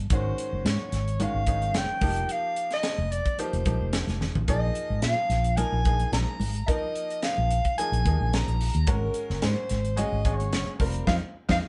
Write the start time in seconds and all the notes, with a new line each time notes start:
0.10 G#1 D#3 G#3 C#4 F#4, kick, closed hi-hat, muted conga
0.14 C5
0.38 closed hi-hat
0.53 F#1
0.65 G#2, snare, closed hi-hat
0.69 C#5
0.92 G#1, snare, closed hi-hat
1.08 closed hi-hat
1.20 D#3 G#3 C#4 F#4 F5, closed hi-hat, muted conga, high conga
1.34 G#1
1.47 D#3 G#3 C#4 D#4, kick, closed hi-hat, muted conga
1.62 closed hi-hat
1.74 F#1 G5, snare, closed hi-hat, high conga
2.01 F1 F3 A#3 D#4 G4, kick, open hi-hat, high conga
2.16 closed hi-hat
2.29 F5, closed hi-hat, muted conga
2.56 closed hi-hat
2.71 D#5, snare, closed hi-hat
2.83 snare, closed hi-hat, muted conga
2.98 F1
3.12 D5, closed hi-hat
3.25 kick, closed hi-hat
3.38 F3 A#3 D#4 G4 C5, closed hi-hat, muted conga
3.53 F1, closed hi-hat
3.65 A#1 F3 A#3 D#4 G4, kick, closed hi-hat, muted conga, high conga
3.81 F1
3.93 snare, closed hi-hat, high conga
4.07 F1, snare, closed hi-hat, high conga
4.21 snare, low conga
4.35 A1, floor tom, low conga
4.48 A#1 F3 A#3 D#4 G#4 D#5, kick, closed hi-hat
4.75 closed hi-hat
4.90 G#1
5.02 A#2 F5, snare, closed hi-hat, muted conga
5.30 A#1, snare, closed hi-hat
5.44 closed hi-hat
5.57 F3 A#3 D#4 A#4 G#5, closed hi-hat, muted conga, high conga
5.72 A#1
5.85 F3 A#3 D#4 G#4, kick, closed hi-hat, muted conga
6.00 closed hi-hat
6.12 A#1 A#5, snare, closed hi-hat, high conga
6.40 G#1, open hi-hat, high conga
6.55 closed hi-hat
6.67 F3 A#3 D#4 A#4 D#5, kick, closed hi-hat, muted conga
6.95 closed hi-hat
7.10 closed hi-hat
7.22 F5, snare, closed hi-hat, muted conga
7.38 A#1
7.51 closed hi-hat
7.65 kick, closed hi-hat
7.77 F3 A#3 D#4 G#4 G#5, closed hi-hat, muted conga
7.92 A#1, closed hi-hat
8.05 D#2 F3 A#3 D#4 G#4, kick, closed hi-hat, muted conga, high conga
8.21 A#1
8.33 A#5, snare, closed hi-hat, high conga
8.48 A#1, closed hi-hat
8.61 open hi-hat
8.74 D#2, closed hi-hat
8.87 G#1 G#3 C#4 F#4 A#4, kick, closed hi-hat, muted conga
9.14 closed hi-hat
9.30 F#1, snare
9.42 G#2 C5, snare, closed hi-hat, muted conga
9.69 G#1, snare, closed hi-hat
9.85 closed hi-hat
9.96 G#3 C#4 F#4 G#4 D#5, closed hi-hat, muted conga, high conga
10.12 G#1
10.25 G#3 C#4 F#4 G#4, kick, closed hi-hat, muted conga
10.34 C#5
10.40 closed hi-hat
10.52 F#1, snare, closed hi-hat, high conga
10.79 F1 G3 C4 F4 A#4, kick, open hi-hat, high conga
10.94 closed hi-hat
11.07 F2 C4 D#4 F4 F5, kick, snare, high conga
11.49 F2 C4 D#4 F4 F5, kick, snare, high conga